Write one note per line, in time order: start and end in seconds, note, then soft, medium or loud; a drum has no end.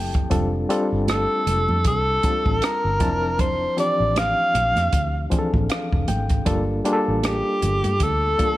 0.00 0.26 F#1 medium
0.00 0.10 A3 medium
0.00 0.10 C4 medium
0.00 0.11 E4 medium
0.00 0.11 G4 medium
0.00 0.11 A4 medium
0.00 0.28 G5 medium
0.00 0.33 A5 medium
0.14 kick medium
0.14 closed hi-hat soft
0.30 0.64 F1 medium
0.30 0.63 G3 medium
0.30 0.63 C4 medium
0.30 0.63 D4 medium
0.30 0.63 F4 medium
0.30 0.63 A4 medium
0.30 kick medium
0.30 closed hi-hat medium
0.30 muted conga soft
0.30 low conga medium
0.69 1.94 G3 medium
0.69 1.94 C4 medium
0.69 1.94 D4 medium
0.69 1.94 F4 medium
0.69 1.94 A4 medium
0.69 closed hi-hat medium
0.69 muted conga soft
0.92 1.25 G1 medium
1.08 1.82 A4 medium
1.08 cross-stick medium
1.08 closed hi-hat medium
1.08 muted conga soft
1.08 high conga medium
1.47 1.66 F1 medium
1.47 closed hi-hat medium
1.47 muted conga soft
1.47 high conga medium
1.47 low conga medium
1.69 1.87 F2 medium
1.69 high conga medium
1.84 2.18 C2 medium
1.84 2.66 A4 medium
1.84 kick medium
1.84 closed hi-hat medium
1.84 muted conga soft
2.23 3.00 G3 medium
2.23 2.99 C4 soft
2.23 2.99 D4 medium
2.23 3.01 F4 medium
2.23 3.00 A5 medium
2.23 kick medium
2.23 closed hi-hat medium
2.23 muted conga soft
2.23 high conga soft
2.46 2.60 A1 medium
2.46 kick medium
2.46 high conga medium
2.62 3.42 A#4 medium
2.62 cross-stick medium
2.62 closed hi-hat medium
2.85 3.01 G1 medium
3.00 3.66 F1 medium
3.00 3.64 F3 medium
3.00 3.65 C4 medium
3.00 3.65 D4 medium
3.00 3.65 E4 medium
3.00 3.65 A5 medium
3.00 kick medium
3.00 closed hi-hat medium
3.00 high conga medium
3.00 low conga medium
3.39 3.79 C5 medium
3.39 kick medium
3.39 closed hi-hat medium
3.39 low conga medium
3.77 5.02 E3 medium
3.77 5.02 F3 medium
3.77 5.02 C4 medium
3.77 5.02 D4 medium
3.77 5.02 G4 medium
3.77 4.20 D5 medium
3.77 closed hi-hat medium
3.77 muted conga soft
4.00 4.33 A1 medium
4.16 5.33 F5 medium
4.16 cross-stick medium
4.16 closed hi-hat medium
4.16 muted conga soft
4.16 high conga medium
4.54 4.74 A#1 medium
4.54 closed hi-hat medium
4.54 high conga medium
4.54 low conga medium
4.76 4.91 F2 medium
4.76 cross-stick soft
4.76 closed hi-hat soft
4.76 high conga medium
4.92 5.26 D2 medium
4.92 kick medium
4.92 closed hi-hat medium
4.92 muted conga soft
5.30 6.27 E3 medium
5.30 6.26 F3 medium
5.30 6.26 C4 medium
5.30 6.26 D4 medium
5.30 5.39 G#4 medium
5.30 kick medium
5.30 closed hi-hat medium
5.30 high conga soft
5.39 6.30 A4 medium
5.54 5.68 A1 medium
5.54 kick medium
5.54 high conga medium
5.70 6.06 F5 medium
5.70 cross-stick loud
5.70 closed hi-hat medium
5.70 muted conga soft
5.93 6.07 F1 medium
5.93 kick medium
6.08 6.42 G#1 medium
6.08 6.44 G5 medium
6.08 closed hi-hat medium
6.08 muted conga soft
6.08 high conga medium
6.08 low conga medium
6.29 kick medium
6.29 closed hi-hat soft
6.45 6.80 G1 medium
6.45 6.78 G3 medium
6.45 6.78 A#3 medium
6.45 6.79 D4 medium
6.45 6.79 F4 medium
6.45 6.79 A4 medium
6.45 kick medium
6.45 closed hi-hat medium
6.45 low conga medium
6.85 8.10 G3 medium
6.85 8.10 A#3 medium
6.85 8.10 D4 medium
6.85 8.10 F4 medium
6.85 6.94 G#4 medium
6.85 closed hi-hat medium
6.85 muted conga soft
6.93 8.14 A4 medium
7.08 7.41 A1 medium
7.23 8.05 G4 medium
7.23 cross-stick medium
7.23 closed hi-hat medium
7.23 muted conga soft
7.23 high conga medium
7.62 7.82 G1 medium
7.62 closed hi-hat medium
7.62 muted conga soft
7.62 high conga medium
7.62 low conga medium
7.84 7.99 G2 medium
7.84 closed hi-hat medium
7.84 high conga medium
8.00 8.34 D2 medium
8.00 8.57 A4 loud
8.00 kick medium
8.00 closed hi-hat medium
8.00 muted conga soft
8.38 8.57 G3 medium
8.38 8.57 A#3 medium
8.38 8.57 D4 medium
8.38 8.57 F4 medium
8.38 8.57 A4 medium
8.38 kick medium
8.38 closed hi-hat medium
8.38 muted conga soft
8.38 high conga soft